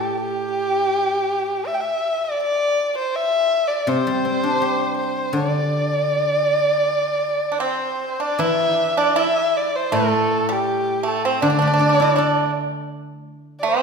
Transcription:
0.00 1.66 A2 medium
0.00 0.20 G4 medium
0.20 1.68 G4 medium
1.67 1.76 E5 medium
1.74 1.82 G5 medium
1.80 2.26 E5 medium
2.24 2.41 D5 medium
2.43 2.93 D5 medium
2.98 3.17 C5 medium
3.15 3.69 E5 loud
3.67 3.91 D5 medium
3.87 5.33 C3 medium
3.87 4.97 C5 medium
4.07 5.52 G3 soft
4.25 5.71 C4 soft
4.43 5.90 D4 soft
4.62 6.09 G4 soft
4.97 5.34 C5 medium
5.33 7.62 D3 medium
5.33 7.61 D5 medium
7.52 7.60 D4 soft
7.60 8.16 C4 medium
7.60 8.22 C5 medium
8.20 8.38 D4 medium
8.20 8.41 D5 medium
8.39 10.68 E3 medium
8.39 8.75 E4 medium
8.39 8.99 E5 medium
8.75 8.94 D4 medium
8.97 9.15 D4 medium
8.97 9.20 D5 medium
9.16 9.89 E4 medium
9.16 9.58 E5 medium
9.56 9.77 D5 medium
9.76 9.95 C5 medium
9.92 11.42 A2 medium
9.92 10.45 A3 medium
9.92 10.53 A4 medium
10.49 11.01 G3 medium
10.49 11.09 G4 medium
11.03 11.22 A3 medium
11.08 11.27 A4 medium
11.25 11.42 C4 medium
11.25 11.43 C5 medium
11.42 13.65 D3 medium
11.42 11.49 D4 medium
11.42 12.50 D5 medium
11.50 11.57 D4 soft
11.59 13.10 A3 soft
11.59 11.65 D4 medium
11.67 11.72 D4 soft
11.74 11.79 D4 medium
11.79 13.28 D4 soft
11.79 11.87 D4 soft
11.89 11.94 D4 soft
11.95 12.01 D4 soft
12.00 12.09 D4 medium
12.00 13.47 E4 soft
12.16 12.51 D4 medium
12.16 13.66 A4 soft
13.59 13.82 C4 medium
13.59 13.70 D5 medium
13.68 13.82 C5 medium

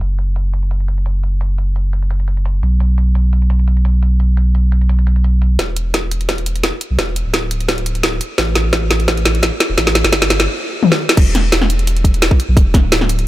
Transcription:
0.01 2.61 F#1 medium
0.01 closed hi-hat medium
0.19 closed hi-hat medium
0.36 closed hi-hat medium
0.53 closed hi-hat medium
0.63 closed hi-hat soft
0.71 closed hi-hat medium
0.80 closed hi-hat soft
0.88 closed hi-hat medium
0.98 closed hi-hat soft
1.06 closed hi-hat medium
1.23 closed hi-hat medium
1.41 closed hi-hat medium
1.58 closed hi-hat medium
1.76 closed hi-hat medium
1.93 closed hi-hat medium
2.02 closed hi-hat soft
2.11 closed hi-hat medium
2.20 closed hi-hat soft
2.28 closed hi-hat medium
2.37 closed hi-hat soft
2.45 closed hi-hat medium
2.63 5.58 B1 medium
2.63 closed hi-hat medium
2.80 closed hi-hat medium
2.98 closed hi-hat medium
3.15 closed hi-hat medium
3.33 closed hi-hat medium
3.42 closed hi-hat soft
3.50 closed hi-hat medium
3.59 closed hi-hat soft
3.68 closed hi-hat medium
3.77 closed hi-hat soft
3.85 closed hi-hat medium
4.03 closed hi-hat medium
4.20 closed hi-hat medium
4.37 closed hi-hat medium
4.55 closed hi-hat medium
4.72 closed hi-hat medium
4.81 closed hi-hat soft
4.89 closed hi-hat medium
4.99 closed hi-hat soft
5.07 closed hi-hat medium
5.16 closed hi-hat soft
5.24 closed hi-hat loud
5.42 closed hi-hat medium
5.59 6.72 E1 medium
5.59 kick medium
5.59 snare soft
5.59 closed hi-hat medium
5.76 closed hi-hat medium
5.94 kick medium
5.94 snare soft
5.94 closed hi-hat medium
6.11 closed hi-hat medium
6.21 closed hi-hat soft
6.29 kick medium
6.29 snare medium
6.29 closed hi-hat medium
6.38 closed hi-hat soft
6.46 closed hi-hat medium
6.56 closed hi-hat soft
6.63 kick medium
6.63 snare medium
6.63 closed hi-hat loud
6.81 closed hi-hat medium
6.91 6.98 B1 loud
6.99 7.24 E1 loud
6.99 kick medium
6.99 snare medium
6.99 closed hi-hat medium
7.16 closed hi-hat medium
7.26 8.20 D1 medium
7.34 kick medium
7.34 snare medium
7.34 closed hi-hat medium
7.51 closed hi-hat medium
7.61 closed hi-hat soft
7.68 kick medium
7.68 snare medium
7.68 closed hi-hat medium
7.78 closed hi-hat soft
7.86 closed hi-hat medium
7.95 closed hi-hat soft
8.03 kick medium
8.03 snare medium
8.03 closed hi-hat loud
8.21 closed hi-hat medium
8.38 9.51 A1 loud
8.38 kick loud
8.38 snare medium
8.38 closed hi-hat medium
8.55 snare medium
8.55 closed hi-hat medium
8.73 kick loud
8.73 snare medium
8.73 closed hi-hat medium
8.91 snare medium
8.91 closed hi-hat medium
9.00 closed hi-hat soft
9.08 kick medium
9.08 snare medium
9.08 closed hi-hat medium
9.17 closed hi-hat soft
9.25 snare medium
9.25 closed hi-hat medium
9.35 closed hi-hat soft
9.43 kick medium
9.43 snare medium
9.43 closed hi-hat medium
9.60 snare medium
9.60 closed hi-hat medium
9.70 9.77 E1 medium
9.78 10.03 A1 loud
9.78 kick medium
9.78 snare medium
9.78 closed hi-hat medium
9.87 snare medium
9.95 snare medium
9.95 closed hi-hat medium
10.04 10.47 G1 medium
10.04 snare medium
10.12 kick loud
10.12 snare loud
10.12 closed hi-hat medium
10.22 snare medium
10.30 snare loud
10.30 closed hi-hat medium
10.40 snare medium
10.40 closed hi-hat soft
10.83 high tom medium
10.92 snare medium
11.09 snare medium
11.17 12.30 E1 loud
11.17 kick loud
11.17 closed hi-hat medium
11.17 crash loud
11.35 snare soft
11.35 closed hi-hat medium
11.52 snare loud
11.52 closed hi-hat loud
11.62 snare soft
11.70 closed hi-hat medium
11.79 closed hi-hat soft
11.87 closed hi-hat medium
11.97 closed hi-hat soft
12.04 kick medium
12.04 closed hi-hat medium
12.14 closed hi-hat soft
12.22 snare loud
12.22 closed hi-hat loud
12.31 kick loud
12.40 closed hi-hat medium
12.49 12.56 B1 medium
12.57 12.82 E1 loud
12.57 kick loud
12.57 closed hi-hat medium
12.74 kick loud
12.74 snare soft
12.74 closed hi-hat medium
12.84 13.28 D1 medium
12.92 snare loud
12.92 closed hi-hat medium
13.01 snare soft
13.09 closed hi-hat medium
13.19 closed hi-hat soft

